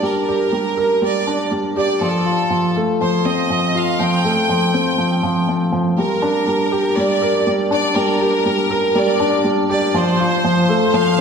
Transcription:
Already playing: G3 D4 G4 A#4
0.03 G3 A#4
0.28 G4
0.52 G3
0.78 A#4
1.02 G3 D5
1.27 D4
1.51 G3
1.76 G4 D5
2.01 F3 A4
2.25 F4
2.50 F3
2.76 A3
3.01 F3 C5
3.25 C4 D#5
3.50 F3
3.75 F4 F5
4.00 F3 G5
4.25 A3
4.49 F3
4.74 C4
4.98 F3
5.23 F3
5.49 F3
5.72 F3
5.97 G3 A#4
6.22 D4
6.47 G3
6.72 G4
6.96 G3 D5
7.22 A#4
7.47 G3
7.71 D4 D5
7.96 G3 A#4
8.21 G4
8.45 G3
8.70 A#4
8.95 G3 D5
9.20 D4
9.44 G3
9.70 G4 D5
9.94 F3 C5
10.20 F4
10.44 F3
10.69 A3
10.94 F3 F5

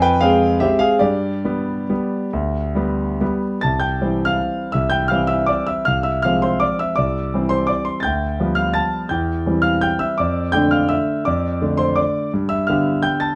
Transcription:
Already playing: F2
0.02 B4 G5
0.21 G#3 C4 G#4 F5
0.60 G#3 C4 G4 E5
0.79 G#4 F5
0.99 G2 G4 D5
1.45 G3 B3
1.90 G3 B3
2.33 D2
2.75 G3 B3
3.21 G3 B3
3.61 C2 A5 A6
3.80 G5 G6
4.01 E3 G3 C4
4.25 F5 F6
4.72 C2 E5 E6
4.90 G5 G6
5.08 E3 G3 C4 F5 F6
5.27 E5 E6
5.46 D5 D6
5.67 E5 E6
5.85 C2 F5 F6
6.03 E5 E6
6.22 F3 G#3 C4 F5 F6
6.42 C5 C6
6.60 D5 D6
6.79 E5 E6
6.96 C2 D5 D6
7.34 E3 G3 C4
7.49 C5 C6
7.67 D5 D6
7.85 C6
8.00 G6 A6
8.04 D2 G5
8.40 F3 G3 B3
8.55 F5 F6
8.74 A5 A6
9.09 E2 G5 G6
9.46 E3 G3 C4
9.62 F5 F6
9.81 G5 G6
9.99 E5 E6
10.18 F2 D5 D6
10.52 D3 A3 D4 G5 G6
10.71 F5 F6
10.89 E5 E6
11.25 F2 D5 D6
11.62 D3 A3 D4
11.77 C5 C6
11.96 D5 D6
12.34 G2
12.49 E5 E6
12.67 D3 B3 G4 F5 F6
13.03 G5 G6
13.20 A5 A6

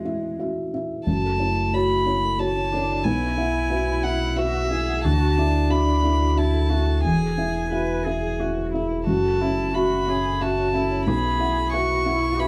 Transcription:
Already playing: E2 G#3 E4 F#4 E5
0.05 E4 E5
0.39 F#4 E5
0.74 E4 E5
1.07 F#1 F#2 A3 F#4 A5
1.25 A4
1.39 E4 C#5
1.73 F#4 C#5 B5
1.91 E5
2.06 E4 C#5
2.39 C#4 F#4 C#5 A5
2.57 C#5
2.72 D4 E4 C#5
2.89 C#5
3.04 B1 E4 B4 G#5
3.22 E5
3.37 E4 E5 F#5
3.70 F#4 B4 E5
3.88 B5
4.03 E4 E5 F#5
4.20 E5
4.36 F#4 B4 E5
4.53 F#5
4.70 E4 G#4 E5
4.88 F#5
5.04 D2 D4 F#4 A5
5.21 F#4
5.37 D4 E4 A4 E5
5.70 D4 F#4 E5 B5
5.87 D5
6.03 E4 A4 E5
6.20 F#4
6.36 D4 E4 F#4 E5 A5
6.53 A4
6.69 E4 F#4 E5
6.87 A4
7.03 E1 E2 E4 G#4 G#5
7.21 G#4
7.37 E4 B4 E5
7.71 E4 F#4 B4 E5
7.89 E5
8.05 E4 G#4 B4 E5
8.22 G#4
8.39 E4 F#4 E5
8.56 B4
8.73 E4 G#4 E5
8.91 B4
9.07 F#1 F#2 F#4 A5
9.24 A4
9.41 C#4 E4 C#5 E5
9.74 F#4 E5 B5
9.91 E5
10.07 C#4 G#4 C#5 E5
10.40 F#4 E5 A5
10.57 C#5
10.73 C#4 E4 E5
10.90 C#5
11.06 B1 G#4 B4 B5
11.24 E5
11.39 E4 E5 F#5
11.73 F#4 B4 E5 C#6
11.90 B5
12.05 E4 E5 F#5
12.22 E5
12.39 F#4 G#4 B4 E5 B5

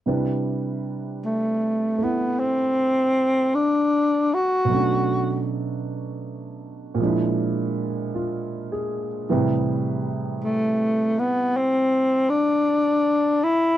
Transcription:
0.06 C3 G3 D4 E4 B4
1.25 A3
1.98 A3 E4
2.03 B3
2.39 C4
3.55 D4
4.34 F#4
4.65 B2 F#3
4.71 A3 C#4
4.76 D4
6.95 A#2 F3
7.00 G#3 D4
7.06 E4
8.15 F4
8.72 G#4
9.29 A2 C3 E3 G3 B4
10.44 A3
11.19 B3
11.57 C4
12.29 D4
13.43 E4

